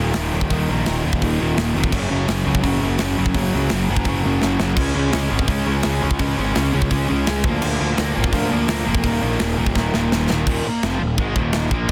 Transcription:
Already playing: picked electric bass D#1, overdriven electric guitar D#2 A#2
0.00 overdriven electric guitar D#3
0.14 picked electric bass D#1, overdriven electric guitar D#2 A#2 D#3, snare, open hi-hat
0.33 picked electric bass D#1, overdriven electric guitar D#2 A#2 D#3
0.41 kick
0.50 picked electric bass D#1, overdriven electric guitar D#2 A#2 D#3, kick, open hi-hat
0.69 picked electric bass A#1, overdriven electric guitar D#2 A#2 D#3
0.86 picked electric bass D#1, overdriven electric guitar D#2 A#2 D#3, snare, open hi-hat
1.05 picked electric bass D#1, overdriven electric guitar D#2 A#2 D#3
1.13 kick
1.22 picked electric bass D#1, overdriven electric guitar D#2 A#2 D#3, kick, open hi-hat
1.40 picked electric bass D#1, overdriven electric guitar D#2 A#2 D#3
1.57 picked electric bass D#1, overdriven electric guitar D#2 A#2 D#3, snare, open hi-hat
1.75 picked electric bass F1, overdriven electric guitar D#2 A#2 D#3
1.84 kick
1.92 picked electric bass F#1, overdriven electric guitar F#2 C#3 F#3, kick, crash
2.10 picked electric bass F#1, overdriven electric guitar F#2 C#3 F#3
2.28 picked electric bass F#1, overdriven electric guitar F#2 C#3 F#3, snare, open hi-hat
2.46 picked electric bass C#2, overdriven electric guitar F#2 C#3 F#3
2.55 kick
2.62 picked electric bass F#1, overdriven electric guitar F#2 C#3 F#3, kick, open hi-hat
2.82 picked electric bass F#1, overdriven electric guitar F#2 C#3 F#3
2.98 picked electric bass F#1, overdriven electric guitar F#2 C#3 F#3, snare, open hi-hat
3.17 picked electric bass F#1, overdriven electric guitar F#2 C#3 F#3
3.26 kick
3.35 picked electric bass F#1, overdriven electric guitar F#2 C#3 F#3, kick, open hi-hat
3.54 picked electric bass C#2, overdriven electric guitar F#2 C#3 F#3
3.70 picked electric bass F#1, overdriven electric guitar F#2 C#3 F#3, snare, open hi-hat
3.89 picked electric bass F#1, overdriven electric guitar F#2 C#3 F#3
3.96 kick
4.05 picked electric bass F#1, overdriven electric guitar F#2 C#3 F#3, kick, open hi-hat
4.24 picked electric bass F#1, overdriven electric guitar F#2 C#3 F#3
4.42 picked electric bass F#1, overdriven electric guitar F#2 C#3 F#3, snare
4.59 picked electric bass F#1, overdriven electric guitar F#2 C#3 F#3, snare
4.76 picked electric bass C#2, overdriven electric guitar C#3 G#3 C#4, kick, crash
4.95 picked electric bass C#2, overdriven electric guitar C#3 G#3 C#4
5.11 picked electric bass C#2, overdriven electric guitar C#3 G#3 C#4, snare, open hi-hat
5.29 picked electric bass G#1, overdriven electric guitar C#3 G#3 C#4
5.39 kick
5.47 picked electric bass C#2, overdriven electric guitar C#3 G#3 C#4, kick, open hi-hat
5.66 picked electric bass C#2, overdriven electric guitar C#3 G#3 C#4
5.83 picked electric bass C#2, overdriven electric guitar C#3 G#3 C#4, snare, open hi-hat
6.02 picked electric bass C#2, overdriven electric guitar C#3 G#3 C#4
6.11 kick
6.19 picked electric bass C#2, overdriven electric guitar C#3 G#3 C#4, kick, open hi-hat
6.37 picked electric bass G#1, overdriven electric guitar C#3 G#3 C#4
6.54 picked electric bass C#2, overdriven electric guitar C#3 G#3 C#4, snare, open hi-hat
6.73 picked electric bass C#2, overdriven electric guitar C#3 G#3 C#4
6.82 kick
6.91 picked electric bass C#2, overdriven electric guitar C#3 G#3 C#4, kick, open hi-hat
7.08 picked electric bass C#2, overdriven electric guitar C#3 G#3 C#4
7.26 picked electric bass C#2, overdriven electric guitar C#3 G#3 C#4, snare, open hi-hat
7.44 picked electric bass D2, overdriven electric guitar A#2 F3 A#3, kick
7.62 picked electric bass D2, overdriven electric guitar A#2 F3 A#3, crash
7.80 picked electric bass D2, overdriven electric guitar A#2 F3 A#3
7.97 picked electric bass D2, overdriven electric guitar A#2 F3 A#3, snare, open hi-hat
8.15 picked electric bass G#1, overdriven electric guitar A#2 F3 A#3
8.24 kick
8.32 picked electric bass D2, overdriven electric guitar A#2 F3 A#3, kick, open hi-hat
8.51 picked electric bass D2, overdriven electric guitar A#2 F3 A#3
8.68 picked electric bass D2, overdriven electric guitar A#2 F3 A#3, snare, open hi-hat
8.86 picked electric bass F1, overdriven electric guitar A#2 F3 A#3
8.95 kick
9.04 picked electric bass D#1, overdriven electric guitar D#2 A#2 D#3, kick, open hi-hat
9.22 picked electric bass A#1, overdriven electric guitar D#2 A#2 D#3
9.40 picked electric bass D#1, overdriven electric guitar D#2 A#2 D#3, snare
9.58 picked electric bass D#1, overdriven electric guitar D#2 A#2 D#3
9.66 kick
9.75 picked electric bass D#1, overdriven electric guitar D#2 A#2 D#3, kick, snare
9.94 picked electric bass D#1, overdriven electric guitar D#2 A#2 D#3, snare
10.12 picked electric bass D#1, overdriven electric guitar D#2 A#2 D#3, snare
10.30 picked electric bass D#1, overdriven electric guitar D#2 A#2 D#3, snare
10.47 picked electric bass D#1, overdriven electric guitar D#2 A#2 D#3, kick, crash
10.66 muted picked electric bass stroke, muted overdriven electric guitar stroke
10.83 picked electric bass F1, overdriven electric guitar F2 C3 F3, snare, crash
11.00 picked electric bass D#1, overdriven electric guitar D#2 A#2
11.18 picked electric bass G#1, overdriven electric guitar G#2 D#3 G#3, kick, crash
11.35 picked electric bass D#1, overdriven electric guitar D#2 A#2 D#3, kick
11.53 snare, crash
11.71 picked electric bass A#1, overdriven electric guitar A#2 F3 A#3, kick
11.88 crash

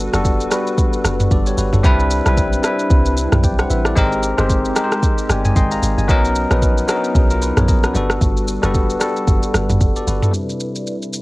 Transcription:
Already playing: tine electric piano G3 B3 D4 F#4 A4, analog synth pad G3 F#4 A4 B4
0.13 log drum bass F#1, tine electric piano G3 B3 D4 F#4 A4, cross-stick, shaker
0.25 kick, shaker
0.40 shaker
0.50 tine electric piano G3 B3 D4 F#4 B4, cross-stick, shaker
0.67 shaker
0.78 kick, shaker
0.93 shaker
1.05 log drum bass F#1, cross-stick, shaker
1.20 mid tom, shaker
1.31 log drum bass G1, tine electric piano A4 D5, kick, shaker
1.46 tine electric piano G4 C#5, shaker
1.58 log drum bass G1, tine electric piano F#4 B4, shaker
1.73 log drum bass F#1, tine electric piano E4 A4, mid tom, shaker
1.83 log drum bass C2, tine electric piano G3 C4 D4 E4 B4, analog synth pad C4 D4 E4 B4, kick, shaker
2.00 shaker
2.11 shaker
2.25 log drum bass B1, tine electric piano G3 C4 D4 E4 B4, cross-stick, shaker
2.37 kick, shaker
2.53 shaker
2.63 tine electric piano G3 C4 D4 E4 B4, cross-stick, shaker
2.79 shaker
2.90 log drum bass C2, kick, shaker
3.06 shaker
3.17 shaker
3.32 log drum bass B1, cross-stick, mid tom, shaker
3.44 tine electric piano D5 G5, kick, shaker
3.59 tine electric piano C5 F#5, cross-stick, shaker
3.70 log drum bass A1, tine electric piano B4 E5, shaker
3.85 tine electric piano A4 D5, cross-stick, shaker
3.95 log drum bass G#1, tine electric piano G#3 C4 D#4 G4 A#4, analog synth pad G#3 C4 G4, kick, shaker
4.12 shaker
4.23 shaker
4.37 log drum bass G1, tine electric piano G#3 C4 D#4 G4 C5, cross-stick, shaker
4.50 kick, shaker
4.65 shaker
4.75 tine electric piano G#3 C4 D#4 G4 A#4, cross-stick, shaker
4.84 tine electric piano C5
4.92 cross-stick, shaker
5.03 kick, shaker
5.18 shaker
5.29 log drum bass G1, tine electric piano D5 G5 G#5, cross-stick, shaker
5.45 tine electric piano D#5 G#5, mid tom, shaker
5.56 log drum bass G#1, tine electric piano D#5 G5 C6, kick, shaker
5.71 tine electric piano F5 A#5, shaker
5.83 log drum bass G#1, shaker
5.98 log drum bass G1, tine electric piano D#5 G#5, shaker
6.08 log drum bass B1, tine electric piano F#3 B3 C#4 D#4 A#4, analog synth pad B3 C#4 D#4, kick, shaker
6.25 shaker
6.35 shaker
6.50 log drum bass A#1, tine electric piano F#3 B3 C#4 D#4 B4, cross-stick, shaker
6.62 kick, shaker
6.78 shaker
6.87 tine electric piano F#3 B3 C#4 D4 A#4, cross-stick, shaker
6.96 tine electric piano D#4
7.04 shaker
7.15 log drum bass B1, tine electric piano D#4 G#4, kick, shaker
7.30 tine electric piano F4 A#4, shaker
7.42 tine electric piano F#4 B4, shaker
7.57 log drum bass A#1, tine electric piano G#4 C#5, cross-stick, mid tom, shaker
7.68 tine electric piano A#4 D#5, kick, shaker
7.84 tine electric piano F#4 B4, cross-stick, shaker
7.94 log drum bass G1, tine electric piano G3 B3 D4 F#4 A4, analog synth pad G3 F#4 A4 B4, shaker
8.10 cross-stick, shaker
8.21 log drum bass G1, kick, shaker
8.37 shaker
8.48 shaker
8.62 log drum bass F#1, tine electric piano G3 B3 D4 F#4 A4, cross-stick, shaker
8.74 kick, shaker
8.90 shaker
9.00 tine electric piano G3 B3 D4 F#4 A4, cross-stick, shaker
9.16 shaker
9.28 log drum bass F#1, kick, shaker
9.43 shaker
9.54 log drum bass G1, cross-stick, shaker
9.70 log drum bass G1, mid tom, shaker
9.81 log drum bass F#1, kick, shaker
9.96 tine electric piano A4 D5, shaker
10.07 log drum bass G1, tine electric piano F#4 B4, shaker
10.22 tine electric piano E4 A4, mid tom, shaker
10.31 analog synth pad C3 E4 B4 D5, tine electric piano G3 C4 D4, shaker
10.36 tine electric piano E4 B4
10.49 shaker
10.60 shaker
10.76 shaker
10.87 shaker
11.02 shaker
11.13 shaker

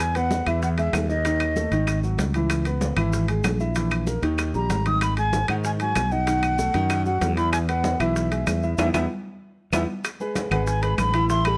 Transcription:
Already playing: fretless electric bass E2
0.00 flute G#5, high bongo, high conga, high timbale, maracas
0.15 grand piano B3 B4, flute F#5, high conga, high timbale, maracas
0.31 high bongo, high conga, maracas
0.46 fretless electric bass E2, grand piano E3 E4, flute E5, high bongo, high conga, high timbale, claves, maracas
0.62 flute F#5, high bongo, high conga, maracas
0.78 grand piano G#3 G#4, flute E5, high bongo, high conga, high timbale, maracas
0.93 fretless electric bass D#2, high bongo, low bongo, high conga, high timbale, low timbale, claves, maracas
1.09 grand piano D#4 D#5, flute D#5, high bongo, high conga, maracas
1.25 grand piano D#3 D#4, high bongo, high conga, high timbale, maracas
1.40 high bongo, high conga, high timbale, claves, maracas
1.56 grand piano A3 A4, high bongo, high conga, maracas
1.71 fretless electric bass G#1, grand piano D#3 D#4, high bongo, high timbale, maracas
1.87 high bongo, high conga, high timbale, claves, maracas
2.02 grand piano F#3 F#4, high bongo, high conga, maracas
2.18 fretless electric bass C#2, high bongo, low bongo, high conga, high timbale, low timbale, maracas
2.34 grand piano E3 E4, high timbale, maracas
2.50 high bongo, high conga, high timbale, claves, maracas
2.65 grand piano B3 B4, high conga, high timbale, maracas
2.81 high bongo, high conga, maracas
2.97 fretless electric bass G#1, grand piano E3 E4, high bongo, high conga, high timbale, claves, maracas
3.13 high bongo, high conga, maracas
3.28 grand piano G#3 G#4, high bongo, high conga, high timbale, maracas
3.44 fretless electric bass A#1, high bongo, low bongo, high conga, high timbale, low timbale, claves, maracas
3.60 grand piano E4 E5, high bongo, high conga, maracas
3.75 grand piano E3 E4, high bongo, high conga, high timbale, maracas
3.91 high bongo, high conga, high timbale, claves, maracas
4.07 grand piano A#3 A#4, high bongo, high conga, maracas
4.22 fretless electric bass D#2, grand piano D#3 D#4, high bongo, high timbale, maracas
4.38 high bongo, high conga, high timbale, claves, maracas
4.54 fretless electric bass A#1, grand piano G3 G4, flute A#5, high bongo, high conga, maracas
4.70 fretless electric bass G#1, high bongo, low bongo, high conga, high timbale, low timbale, maracas
4.86 grand piano D#3 D#4, flute D#6, high conga, high timbale, maracas
5.01 flute B5, high bongo, high conga, high timbale, claves, maracas
5.17 grand piano G#3 G#4, flute G#5, high conga, high timbale, maracas
5.33 high bongo, high conga, maracas
5.48 fretless electric bass G#2, grand piano D#3 D#4, flute F#5, high bongo, high conga, high timbale, claves, maracas
5.64 flute G#5, high bongo, high conga, maracas
5.80 grand piano F#3 F#4, flute G#5, high bongo, high conga, high timbale, maracas
5.95 fretless electric bass B1, high bongo, low bongo, high conga, high timbale, claves, maracas
6.12 grand piano D#4 D#5, flute F#5, high bongo, high conga, maracas
6.27 grand piano D#3 D#4, high bongo, high conga, high timbale, maracas
6.43 high bongo, high conga, high timbale, claves, maracas
6.58 grand piano A3 A4, high bongo, high conga, maracas
6.74 fretless electric bass F#2, grand piano D#3 D#4, high bongo, high timbale, maracas
6.90 high bongo, high conga, high timbale, claves, maracas
7.06 grand piano F#3 F#4, flute F#5, high bongo, high conga, maracas
7.21 fretless electric bass E2, high bongo, low bongo, high conga, high timbale, low timbale, maracas
7.37 grand piano E3 E4, flute B5, high timbale, maracas
7.52 flute G#5, high bongo, high conga, high timbale, claves, maracas
7.68 grand piano B3 B4, flute F#5, high conga, high timbale, maracas
7.84 high bongo, high conga, maracas
8.00 fretless electric bass B1, grand piano E3 E4, flute E5, high bongo, high conga, high timbale, claves, maracas
8.16 high bongo, high conga, maracas
8.31 grand piano G#3 G#4, high bongo, high conga, high timbale, maracas
8.47 fretless electric bass E2, high bongo, low bongo, high conga, high timbale, claves, maracas
8.63 grand piano E4 E5, high bongo, high conga, maracas
8.78 fretless electric bass E2, grand piano B3 D#4 E4, flute E5, low bongo, high conga, high timbale, claves, maracas
8.94 fretless electric bass E2, grand piano B3 D#4 E4, flute E5, low bongo, high conga, high timbale, claves, maracas
9.72 fretless electric bass E2, grand piano B3 D#4 E4, flute E5, low bongo, high conga, high timbale, claves, maracas
10.04 high bongo, high conga, high timbale, claves, maracas
10.20 grand piano G#3 G#4 B4, high bongo, high conga, maracas
10.36 high bongo, high conga, high timbale, maracas
10.51 fretless electric bass G#1, grand piano G#3 G#4 B4, flute F#5, high bongo, high conga, low conga, high timbale, claves, maracas
10.66 flute G#5, high bongo, high conga, maracas
10.82 grand piano G#3 G#4 B4, flute B5, high conga, high timbale, maracas
10.98 fretless electric bass A1, flute B5, high bongo, low bongo, high conga, high timbale, claves, maracas
11.14 grand piano E3 E4 E5, high bongo, high timbale, maracas
11.29 grand piano E3 E4 E5, flute C6, high bongo, high conga, maracas
11.45 grand piano G3 G4 A4, flute B5, high bongo, high conga, high timbale, claves, maracas

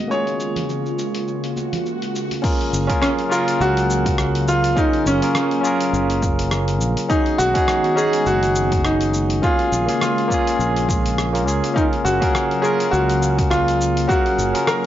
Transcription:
Already playing: analog synth pad G#3, grand piano D#5
0.08 analog synth pad C#3 A#3 F4, tine electric piano A#3 C#4, grand piano C#5, shaker
0.12 tine electric piano F4 G#4
0.27 open hi-hat, shaker
0.40 shaker
0.56 open hi-hat, low conga, shaker
0.69 shaker
0.86 shaker
0.99 shaker
1.15 open hi-hat, shaker
1.27 swell, shaker
1.44 open hi-hat, shaker
1.56 high conga, shaker
1.73 open hi-hat, low conga, shaker
1.86 shaker
2.02 open hi-hat, shaker
2.15 shaker
2.31 open hi-hat, high conga, shaker
2.42 analog synth pad C#3 F#3 A#3 F5, tine electric piano C#4 F4 G#4 A#4, kick, crash, shaker
2.61 open hi-hat
2.73 fingered electric bass F#1, shaker
2.87 tine electric piano C#4 F4 G#4 A#4, kick, open hi-hat, shaker
3.02 grand piano C#4, cross-stick, shaker
3.19 open hi-hat
3.29 tine electric piano C#4 F4 G#4 A#4, grand piano F4, shaker
3.48 open hi-hat, shaker
3.60 fingered electric bass C#2, grand piano F#4, shaker
3.77 open hi-hat, shaker
3.90 shaker
4.06 kick, open hi-hat, shaker
4.18 cross-stick, shaker
4.35 open hi-hat, shaker
4.48 grand piano F4, shaker
4.64 open hi-hat, shaker
4.76 tine electric piano C#4 F4 G#4 A#4, grand piano D#4, kick, shaker
4.93 open hi-hat
5.06 fingered electric bass F#1, grand piano C#4, shaker
5.21 tine electric piano C#4 F4 G#4 A#4, open hi-hat, shaker
5.35 cross-stick, shaker
5.51 open hi-hat
5.61 tine electric piano C#4 F4, shaker
5.65 tine electric piano G#4 A#4
5.80 open hi-hat, shaker
5.93 fingered electric bass F#1, shaker
6.10 open hi-hat, shaker
6.22 kick, shaker
6.39 open hi-hat, shaker
6.51 cross-stick, shaker
6.68 open hi-hat, shaker
6.81 fingered electric bass A#1, shaker
6.97 open hi-hat, shaker
7.09 analog synth pad D#3 G#3 B3 F#4, tine electric piano C#4 D#4 F#4 G#4, grand piano D#4, kick, shaker
7.26 open hi-hat
7.38 fingered electric bass B1, grand piano F#4, shaker
7.54 tine electric piano C#4 D#4 F#4 G#4, kick, open hi-hat, shaker
7.68 cross-stick, shaker
7.84 open hi-hat
7.96 tine electric piano C#4 D#4 F#4 G#4, grand piano G#4, shaker
8.13 open hi-hat, shaker
8.26 fingered electric bass F#1, grand piano F#4, shaker
8.43 open hi-hat, shaker
8.55 shaker
8.72 kick, open hi-hat, shaker
8.85 grand piano D#4, cross-stick, shaker
9.01 open hi-hat, shaker
9.14 shaker
9.30 open hi-hat, shaker
9.42 analog synth pad C#3 G#3 A#3 F4, tine electric piano A#3 C#4 F4 G#4, grand piano F4, kick, shaker
9.59 open hi-hat
9.72 fingered electric bass A#1, shaker
9.86 tine electric piano A#3 C#4 F4 G#4, open hi-hat, shaker
10.01 grand piano F4, cross-stick, shaker
10.18 open hi-hat
10.28 tine electric piano A#3 C#4, kick, shaker
10.32 tine electric piano F4 G#4
10.47 open hi-hat, shaker
10.59 fingered electric bass A#1, shaker
10.76 open hi-hat, shaker
10.89 kick, shaker
11.06 open hi-hat, shaker
11.18 cross-stick, shaker
11.33 tine electric piano A#3 C#4 F4 A#4, open hi-hat, shaker
11.45 fingered electric bass C#2, tine electric piano A#3 C#4 F4 G#4, shaker
11.64 open hi-hat, shaker
11.74 analog synth pad F#3 F5, tine electric piano C#4 F4 G#4 A#4, grand piano D#4, kick, shaker
11.93 open hi-hat
12.05 fingered electric bass F#1, grand piano F#4, shaker
12.20 tine electric piano C#4 G#4 A#4 F5, kick, open hi-hat, shaker
12.35 cross-stick, shaker
12.51 open hi-hat
12.62 tine electric piano C#4 F4 G#4 A#4, grand piano G#4, shaker
12.80 open hi-hat, shaker
12.91 fingered electric bass C#2, grand piano F#4, shaker
13.10 open hi-hat, shaker
13.22 shaker
13.38 kick, open hi-hat, shaker
13.50 grand piano F4, cross-stick, shaker
13.68 open hi-hat, shaker
13.81 shaker
13.97 open hi-hat, shaker
14.08 tine electric piano C#4 G#4 A#4 F5, grand piano F#4, kick, shaker
14.26 open hi-hat
14.38 fingered electric bass F#1, shaker
14.53 tine electric piano C#4 F4 G#4 A#4, open hi-hat, shaker
14.67 grand piano A#4, cross-stick, shaker

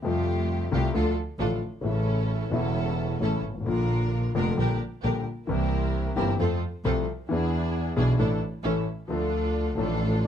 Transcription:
0.02 double bass F2, grand piano F2 C3 F3 G3 A3 F4, string section A3 F4 G4
0.72 grand piano C2 C3 G3 A3 F4, double bass C2, string section A3 F4 G4
0.94 grand piano D2 D3 F3 A3 F4, double bass D2, string section D4 F4 A4
1.39 double bass A1, grand piano A1 A2 D3 F3 A3 F4, string section D4 F4 A4
1.81 double bass A1, grand piano A1 A2 C#3 E3 A3, string section C#4 E4 A4
1.86 grand piano E4
2.50 double bass E1, grand piano E1 E2 C#3 E3 A3 E4, string section C#4 E4 A4
3.20 grand piano A1 A2 C#3 E3 A3 E4, double bass A1, string section C#4 E4 A4
3.44 double bass G#1
3.49 grand piano G1
3.54 grand piano G#1
3.61 grand piano A1 D3
3.66 grand piano A#1 A#2 F3 A#3 F4, double bass A#1, string section D4 F4 A#4
4.35 double bass F1, grand piano F1 F2 D3 F3 A#3 F4, string section D4 F4 A#4
4.57 grand piano A#1 A#2 D3 G3 A#3 G4, double bass A#1, string section D4 G4 A#4
5.03 double bass A#1, grand piano A#1 A#2 D3 G3 A#3 G4, string section D4 G4 A#4
5.47 grand piano C2 C3 E3 A#3 C4, double bass C2, string section C4 E4 A#4
5.51 grand piano G4
6.16 double bass G1, grand piano G1 G2 E3 A#3 C4 G4, string section C4 E4 A#4
6.39 double bass F2, grand piano F2 F3 A3 C4 A4, string section C4 F4 A4
6.84 double bass C2, grand piano C2 C3 F3 A3 C4 A4, string section C4 F4 A4
7.29 double bass E2, grand piano E2 E3 B3 D4 G#4, string section D4 E4 G#4
7.96 double bass B1, grand piano B1 B2 E3 B3 D4 G#4, string section D4 E4 G#4
8.18 double bass A1, grand piano A1 A2 E3 A3 D4 A4, string section D4 E4 A4
8.63 double bass A1, grand piano A1 A2 E3 A3 C#4 A4, string section C#4 E4 A4
9.08 double bass D2, grand piano D2 D3 F3 A3 D4, string section D4 F4 A4
9.12 grand piano A4
9.76 double bass A1, grand piano A1 A2 F3 A3 D4 A4, string section D4 F4 A4

